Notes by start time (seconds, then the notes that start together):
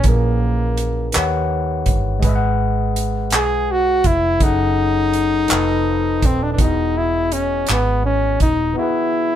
0.03 A#1 A#2 E3 C#4 G#4, kick, closed hi-hat
0.08 A#3 A#4
0.77 closed hi-hat
1.12 D#3 D#4 G4 B4 C#5, clap, closed hi-hat
1.16 D#2 F#5
1.86 G1, kick, closed hi-hat
2.19 G#3 G#4, kick, closed hi-hat
2.24 G#1 B4 D#5
2.29 E5
2.35 F#5
2.96 closed hi-hat
3.30 B1, clap, closed hi-hat
3.35 G#4
3.72 F#4
4.04 F1 E4, kick, closed hi-hat
4.39 F#1 F#3 C#4 G#4 A4, kick, closed hi-hat
4.43 D#4 F#5
5.13 closed hi-hat
5.48 F1 F3 C4 A4 B4, clap, closed hi-hat
5.53 D#5
6.22 D#1 C4, kick, closed hi-hat
6.43 D4
6.52 E3 D4
6.57 E1 B3 D#4 F#4, kick, closed hi-hat
6.62 G#4 D#5
6.97 E4
7.32 C#4, closed hi-hat
7.67 G#1, clap, closed hi-hat
7.71 B3
8.05 C#4
8.40 D#1 D#4, kick, closed hi-hat
8.73 E3 B3
8.78 E4 F#4 G#4
8.83 B4